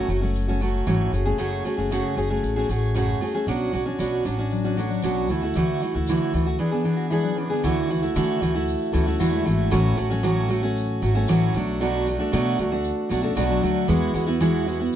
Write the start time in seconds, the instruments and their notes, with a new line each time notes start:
0.09 upright bass F#1, steel-string acoustic guitar F#3 A3 C#4 F#4, tambourine
0.21 steel-string acoustic guitar F#3 A3 C#4 F#4
0.36 tambourine
0.48 steel-string acoustic guitar F#3 A3 C#4 F#4, tambourine
0.61 steel-string acoustic guitar F#3 A3 C#4 F#4, tambourine
0.74 tambourine
0.86 upright bass G#1, steel-string acoustic guitar A2 E3 F#3 A3 C#4 F#4, tambourine
1.13 upright bass F#1, steel-string acoustic guitar A3 C#4 F#4 G#4, tambourine
1.25 steel-string acoustic guitar A3 C#4 F#4 G#4
1.38 upright bass F#1, steel-string acoustic guitar F#2 C#3 A3 C#4 F#4 G#4, tambourine
1.64 steel-string acoustic guitar A3 C#4 F#4 G#4, tambourine
1.77 upright bass F#1, steel-string acoustic guitar A3 C#4 F#4 G#4, tambourine
1.91 steel-string acoustic guitar F#2 C#3 A3 C#4 F#4 G#4, tambourine
2.16 upright bass F#1, steel-string acoustic guitar A3 C#4 F#4 G#4, tambourine
2.30 steel-string acoustic guitar A3 C#4 F#4 G#4
2.43 upright bass A1, tambourine
2.56 steel-string acoustic guitar A3 C#4 F#4 G#4
2.69 upright bass A1, steel-string acoustic guitar A3 C#4 F#4 G#4, tambourine
2.83 tambourine
2.94 steel-string acoustic guitar F#2 C#3 A3 C#4 F#4 G#4, tambourine
3.21 steel-string acoustic guitar A3 C#4 F#4 G#4, tambourine
3.34 steel-string acoustic guitar A3 C#4 F#4 G#4, tambourine
3.47 upright bass B1, steel-string acoustic guitar B2 F#3 C#4 D4 F#4, tambourine
3.73 upright bass B1, steel-string acoustic guitar F#3 C#4 D4 F#4, tambourine
3.85 steel-string acoustic guitar C#4 D4 F#4
3.98 upright bass B1, steel-string acoustic guitar B2 F#3 C#4 D4 F#4, tambourine
4.25 upright bass A1, steel-string acoustic guitar F#3 C#4 D4 F#4, tambourine
4.38 steel-string acoustic guitar C#4 D4 F#4
4.51 clean electric guitar F#3 D4, tambourine
4.64 steel-string acoustic guitar C#4 D4 F#4, tambourine
4.77 steel-string acoustic guitar F#3 C#4 D4 F#4, clean electric guitar A3 F#4, tambourine
4.90 clean electric guitar F#3 D4, tambourine
5.02 upright bass B1, steel-string acoustic guitar B2 F#3 C#4 D4 F#4, tambourine
5.28 upright bass D2, steel-string acoustic guitar E3 A3 E4 F#4, tambourine
5.42 steel-string acoustic guitar A3 E4 F#4, tambourine
5.54 upright bass D2, steel-string acoustic guitar D3 E3 A3 E4 F#4, tambourine
5.80 steel-string acoustic guitar E3 A3 E4 F#4, tambourine
5.95 upright bass D2, steel-string acoustic guitar A3 E4 F#4
6.06 steel-string acoustic guitar D3 E3 A3 E4 F#4, tambourine
6.34 upright bass D2, steel-string acoustic guitar E3 A3 E4 F#4, tambourine
6.46 steel-string acoustic guitar A3 E4 F#4
6.58 steel-string acoustic guitar E3 B3 D4 G#4
6.71 steel-string acoustic guitar B3 D4 G#4
6.84 steel-string acoustic guitar E3 B3 D4 G#4, clean electric guitar B3 G#4
6.97 clean electric guitar F#4
7.10 steel-string acoustic guitar E3 B3 D4 G#4, clean electric guitar G#3 E4
7.23 clean electric guitar F#3 D4
7.36 clean electric guitar E3 C#4, steel-string acoustic guitar E3 B3 D4 G#4
7.49 clean electric guitar D3 B3, steel-string acoustic guitar B3 D4 G#4
7.63 upright bass D2, steel-string acoustic guitar D3 E3 A3 E4 F#4, tambourine
7.89 steel-string acoustic guitar E3 A3 E4 F#4, tambourine
8.02 steel-string acoustic guitar A3 E4 F#4, tambourine
8.15 steel-string acoustic guitar D3 E3 A3 E4 F#4, upright bass D3, tambourine
8.41 upright bass D2, steel-string acoustic guitar E3 A3 E4 F#4, tambourine
8.54 steel-string acoustic guitar A3 E4 F#4
8.67 tambourine
8.82 tambourine
8.93 upright bass D2, steel-string acoustic guitar E3 A3 E4 F#4, clean electric guitar C#4 A4, tambourine
9.06 steel-string acoustic guitar A3 E4 F#4, tambourine
9.19 upright bass E2, steel-string acoustic guitar D3 E3 A3 E4 F#4, clean electric guitar A3 F#4, tambourine
9.33 clean electric guitar G#3 E4
9.45 upright bass G#1, steel-string acoustic guitar E3 A3 E4 F#4, tambourine
9.71 upright bass A1, steel-string acoustic guitar A2 E3 F#3 A3 C#4 F#4, tambourine
9.96 upright bass A1, steel-string acoustic guitar F#3 A3 C#4 F#4, tambourine
10.10 steel-string acoustic guitar F#3 A3 C#4 F#4, tambourine
10.23 steel-string acoustic guitar A2 E3 F#3 A3 C#4 F#4, tambourine
10.48 steel-string acoustic guitar F#3 A3 C#4 F#4, tambourine
10.62 steel-string acoustic guitar F#3 A3 C#4 F#4
10.76 tambourine
11.02 upright bass G#1, steel-string acoustic guitar F#3 A3 C#4 F#4, tambourine
11.15 steel-string acoustic guitar F#3 A3 C#4 F#4, tambourine
11.28 upright bass A1, steel-string acoustic guitar A2 E3 F#3 A3 C#4 F#4, tambourine
11.54 upright bass B1, steel-string acoustic guitar F#3 A3 D4 F#4, tambourine
11.80 steel-string acoustic guitar B2 F#3 A3 D4 F#4, tambourine
12.06 steel-string acoustic guitar F#3 A3 D4 F#4, tambourine
12.19 steel-string acoustic guitar A3 D4 F#4
12.32 steel-string acoustic guitar B2 F#3 A3 D4 F#4, upright bass B2, tambourine
12.58 upright bass D2, steel-string acoustic guitar F#3 A3 D4 F#4, tambourine
12.72 steel-string acoustic guitar A3 D4 F#4
12.84 tambourine
13.09 upright bass B1, steel-string acoustic guitar F#3 A3 D4 F#4, tambourine
13.22 steel-string acoustic guitar A3 D4 F#4, clean electric guitar C#4 A4, tambourine
13.36 upright bass B1, steel-string acoustic guitar B2 F#3 A3 D4 F#4, clean electric guitar A3 F#4, tambourine
13.48 clean electric guitar F#3 D4
13.62 upright bass D2, steel-string acoustic guitar F#3 A3 D4 F#4, tambourine
13.88 upright bass E2, steel-string acoustic guitar E3 G#3 B3 E4 F#4, tambourine
14.14 upright bass E2, steel-string acoustic guitar G#3 B3 E4 F#4, tambourine
14.26 steel-string acoustic guitar B3 E4 F#4, tambourine
14.40 steel-string acoustic guitar E3 G#3 B3 E4 F#4, tambourine
14.66 steel-string acoustic guitar G#3 B3 E4 F#4, tambourine
14.79 steel-string acoustic guitar B3 E4 F#4
14.93 tambourine